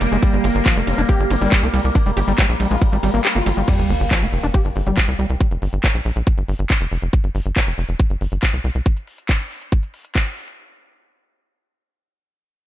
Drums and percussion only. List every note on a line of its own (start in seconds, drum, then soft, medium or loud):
0.01 open hi-hat loud
0.01 ride medium
0.12 closed hi-hat medium
0.23 kick loud
0.23 closed hi-hat medium
0.23 ride medium
0.33 closed hi-hat medium
0.44 open hi-hat loud
0.44 ride medium
0.55 closed hi-hat medium
0.66 kick loud
0.66 clap loud
0.66 closed hi-hat medium
0.66 ride medium
0.77 closed hi-hat medium
0.87 open hi-hat loud
0.87 ride medium
0.98 closed hi-hat medium
1.09 kick loud
1.09 closed hi-hat medium
1.09 ride medium
1.20 closed hi-hat medium
1.30 open hi-hat loud
1.30 ride medium
1.41 closed hi-hat medium
1.52 kick loud
1.52 clap loud
1.52 closed hi-hat medium
1.52 ride medium
1.63 closed hi-hat medium
1.74 open hi-hat medium
1.74 ride medium
1.84 closed hi-hat medium
1.95 kick loud
1.95 closed hi-hat medium
1.95 ride medium
2.06 closed hi-hat medium
2.17 open hi-hat loud
2.17 ride medium
2.28 closed hi-hat medium
2.38 kick loud
2.38 clap loud
2.38 closed hi-hat medium
2.38 ride medium
2.49 closed hi-hat medium
2.60 open hi-hat loud
2.60 ride medium
2.71 closed hi-hat medium
2.82 kick loud
2.82 closed hi-hat medium
2.82 ride medium
2.92 closed hi-hat medium
3.03 open hi-hat loud
3.03 ride medium
3.14 closed hi-hat medium
3.25 clap loud
3.25 open hi-hat medium
3.25 ride medium
3.36 closed hi-hat medium
3.46 open hi-hat loud
3.46 ride medium
3.57 closed hi-hat medium
3.68 kick loud
3.68 closed hi-hat medium
3.68 crash medium
3.79 closed hi-hat medium
3.89 open hi-hat loud
4.00 closed hi-hat medium
4.11 kick loud
4.11 clap loud
4.11 closed hi-hat medium
4.22 closed hi-hat medium
4.33 open hi-hat loud
4.43 closed hi-hat medium
4.54 kick loud
4.54 closed hi-hat medium
4.65 closed hi-hat medium
4.76 open hi-hat loud
4.87 closed hi-hat medium
4.97 kick loud
4.97 clap loud
4.97 closed hi-hat medium
5.08 closed hi-hat medium
5.19 open hi-hat loud
5.30 closed hi-hat medium
5.41 kick loud
5.41 closed hi-hat medium
5.51 closed hi-hat medium
5.62 open hi-hat loud
5.73 closed hi-hat medium
5.84 kick loud
5.84 clap loud
5.84 closed hi-hat medium
5.95 closed hi-hat medium
6.05 open hi-hat loud
6.16 closed hi-hat medium
6.27 kick loud
6.27 closed hi-hat medium
6.38 closed hi-hat medium
6.48 open hi-hat loud
6.59 closed hi-hat medium
6.70 kick loud
6.70 clap loud
6.70 open hi-hat medium
6.81 closed hi-hat medium
6.92 open hi-hat loud
7.02 closed hi-hat medium
7.13 kick loud
7.13 closed hi-hat medium
7.24 closed hi-hat medium
7.35 open hi-hat loud
7.46 closed hi-hat medium
7.56 kick loud
7.56 clap loud
7.56 closed hi-hat medium
7.67 closed hi-hat soft
7.78 open hi-hat loud
7.89 closed hi-hat medium
8.00 kick loud
8.00 closed hi-hat medium
8.10 closed hi-hat medium
8.21 open hi-hat loud
8.32 closed hi-hat medium
8.43 kick loud
8.43 clap loud
8.43 closed hi-hat medium
8.54 closed hi-hat medium
8.64 open hi-hat loud
8.75 closed hi-hat soft
8.86 kick loud
8.86 closed hi-hat medium
8.97 closed hi-hat medium
9.08 open hi-hat loud
9.18 closed hi-hat soft
9.29 kick loud
9.29 clap loud
9.29 closed hi-hat medium
9.40 closed hi-hat medium
9.51 open hi-hat loud
9.62 closed hi-hat medium
9.72 kick loud
9.72 closed hi-hat medium
9.83 closed hi-hat soft
9.94 open hi-hat loud
10.05 closed hi-hat soft
10.15 kick loud
10.15 clap loud
10.15 open hi-hat medium
10.26 closed hi-hat soft
10.37 open hi-hat loud
10.48 closed hi-hat soft